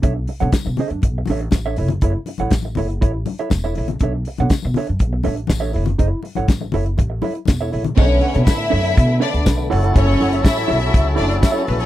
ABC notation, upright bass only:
X:1
M:4/4
L:1/16
Q:1/4=121
K:Bm
V:1 name="Upright bass" clef=bass
B,,,2 z B,, z B,, z F,, B,,,2 A,,,2 A,,,2 F,,,2 | F,,, z2 A,,, A,,,2 F,,,2 A,,,2 z2 E,,,2 ^A,,,2 | B,,,2 z B,, z B,, z F,, B,,,2 A,,,2 A,,,2 F,,,2 | F,,, z2 A,,, A,,,2 F,,,2 A,,,2 z2 E,,,2 ^A,,,2 |
B,,,2 z B,, A,,2 F,,2 B,,2 z D,, B,,,2 F,,,2 | F,,,2 F,,,2 A,,,2 B,,,2 C,,2 F,,,2 z2 ^A,,,2 |]